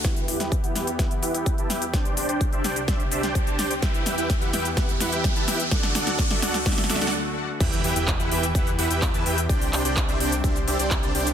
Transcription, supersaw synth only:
X:1
M:4/4
L:1/16
Q:1/4=127
K:Em
V:1 name="Supersaw synth"
[EGBeg]2 [EGBeg] [EGBeg] z [EGBef] [EGBeg] z [EGBef] z [EGBef] [EGBeg]2 [EGBea] [EGBeg] z | [DGcdg]2 [DGcdg] [DGcdg] z [DGcde] [DGcdg] z [DGcde] z [DGcde] [DGcdg]2 [DGcda] [DGcdg] z | [EGBeg]2 [EGBeg] [EGBeg] z [EGBef] [EGBeg] z [EGBef] z [EGBef] [EGBeg]2 [EGBea] [EGBeg] z | [DFAdf]2 [DFAdf] [DFAdf] z [DFAde] [DFAdf] z [DFAde] z [DFAde] [DFAdf] z4 |
[EGBeg]2 [EGBeg] [EGBeg] z [EGBef] [EGBeg] z [EGBef] z [EGBef] [EGBeg]2 [EGBea] [EGBeg] z | [DGcdg]2 [DGcdg] [DGcdg] z [DGcde] [DGcdg] z [DGcde] z [DGcde] [DGcdg]2 [DGcda] [DGcdg] z |]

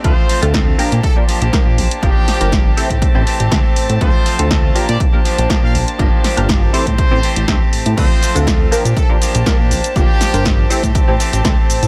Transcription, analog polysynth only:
X:1
M:4/4
L:1/16
Q:1/4=121
K:Bblyd
V:1 name="Analog polysynth"
[A,CDFA] z2 [A,CDFA]3 [B,DFGB] z2 [B,DFGB] z2 [B,DFGB] z3 | [B,DFGB] z2 [B,DFGB]3 [CEGAc] z2 [CEGAc] z2 [CEGAc] z3 | [A,CDFA] z2 [A,CDFA]3 [B,DFGB] z2 [B,DFGB] z2 [B,DFGB] z3 | [B,DFGB] z2 [B,DFGB]3 [CEGAc] z2 [CEGAc] z2 [CEGAc] z3 |
[A,CDFA] z2 [A,CDFA]3 [B,DFGB] z2 [B,DFGB] z2 [B,DFGB] z3 | [B,DFGB] z2 [B,DFGB]3 [CEGAc] z2 [CEGAc] z2 [CEGAc] z3 |]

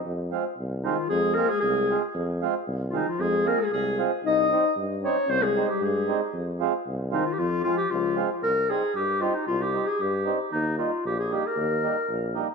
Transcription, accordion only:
X:1
M:2/4
L:1/16
Q:1/4=115
K:Fm
V:1 name="Accordion"
z2 [A,CF] z3 [A,CF] z | z2 [A,CF] z3 [A,CF] z | z2 [A,CF] z3 [A,CF] z | z2 [A,CF] z3 [A,CF] z |
z2 [G,CE] z3 [G,CE] z | z2 [G,CE] z3 [G,CE] z | z2 [A,CF] z3 [A,CF] z | z2 [A,CF] z3 [A,CF] z |
[K:Cm] z2 [G,CE] z3 [G,CE] z | z2 [G,CE] z3 [G,CE] z | z2 [G,B,E] z3 [G,B,E] z | z2 [G,B,E] z3 [G,B,E] z |]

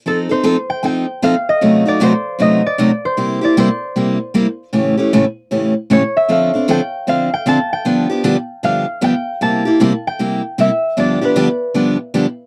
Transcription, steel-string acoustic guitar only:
X:1
M:4/4
L:1/16
Q:"Swing" 1/4=154
K:Gdor
V:1 name="Steel-string acoustic guitar"
[F,C_EA]2 [CEA]2 [F,CEA] z3 [F,CEA]2 z2 [F,CEA] z3 | [^F,,C,^F,A,^D^F]2 [F,A,DF]2 [F,,C,F,A,DF] z3 [F,,C,F,A,DF]2 z2 [F,,C,F,A,DF] z3 | [C,G,B,EG]2 [B,EG]2 [C,G,B,EG] z3 [C,G,B,EG]2 z2 [C,G,B,EG] z3 | [A,,^C,E,A,^CG]2 [E,A,CG]2 [A,,C,E,A,CG] z3 [A,,C,E,A,CG]2 z2 [A,,C,E,A,CG] z3 |
[D,F,CDA]2 [CDA]2 [D,F,CDA] z3 [D,F,CDA]2 z2 [D,F,CDA] z3 | [G,,D,F,=B,DG]2 [F,B,DG]2 [G,,D,F,B,DG] z3 [G,,D,F,B,DG]2 z2 [G,,D,F,B,DG] z3 | [C,G,B,EG]2 [B,EG]2 [C,G,B,EG] z3 [C,G,B,EG]2 z2 [C,G,B,EG] z3 | [G,,D,F,=B,DG]2 [F,B,DG]2 [G,,D,F,B,DG] z3 [G,,D,F,B,DG]2 z2 [G,,D,F,B,DG] z3 |]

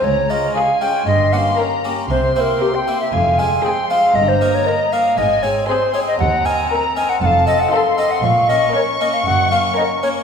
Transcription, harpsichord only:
X:1
M:4/4
L:1/8
Q:1/4=117
K:Ab
V:1 name="Harpsichord"
z [A,DF]2 [A,DF] z [B,DG]2 [B,DG] | z [B,C=E]2 [B,CE] z [A,CF]2 [A,CF] | z [B,EB]2 [B,EB] A, [CEA]2 [CEA] | [K:Bbm] z [CEB]2 [CEB] z [CE=A]2 [CEA] |
z [B,DB]2 [B,DB] z [B,DB]2 [B,DB] |]
V:2 name="Harpsichord" clef=bass
D,,2 z2 G,,2 z2 | C,2 z2 F,,2 z2 | G,,2 z2 A,,2 z2 | [K:Bbm] E,,2 z2 F,,2 z2 |
B,,2 z2 G,,2 z2 |]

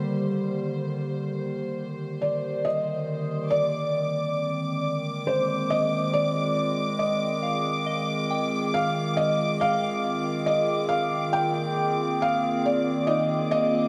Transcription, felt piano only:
X:1
M:4/4
L:1/8
Q:1/4=69
K:Fdor
V:1 name="Felt piano"
z4 z d e2 | d4 c e d2 | e4 f e f2 | e f g2 f d e e |]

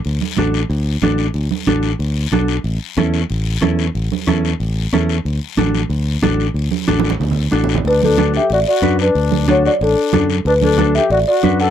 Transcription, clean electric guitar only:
X:1
M:4/4
L:1/8
Q:1/4=184
K:D
V:1 name="Clean electric guitar"
z2 [DFA] z3 [DFA] z | z2 [DFA] z3 [DFA] z | z2 [CEA] z3 [CEA] z | z2 [CEA] z3 [CEA] z |
z2 [DFA] z3 [DFA] z | z2 [DFA] z3 [DFA] z | z2 [DFA] z3 [DFB] z | z2 [DFA] z3 [DFA] z |
z2 [DFA] z3 [DFB] z |]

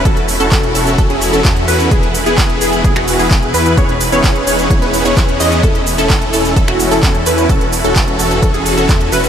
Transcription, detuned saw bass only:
X:1
M:4/4
L:1/16
Q:1/4=129
K:F#dor
V:1 name="Detuned saw bass" clef=bass
E,,,3 E,,, E,,,2 E,,,2 E,,, E,,,2 E,,, E,,2 E,,2 | E,,,3 E,,, E,,,2 E,,,2 E,,, E,,,2 E,,, E,,,2 E,,2 | E,,,3 E,,, E,,,2 E,,,2 E,,, E,,,2 E,,, E,,2 E,,2 | E,,,3 E,,, E,,,2 E,,,2 E,,, E,,,2 E,,, E,,2 E,,2 |
E,,,3 E,,, E,,,2 E,,,2 E,,, E,,,2 E,,, E,,2 E,,,2 |]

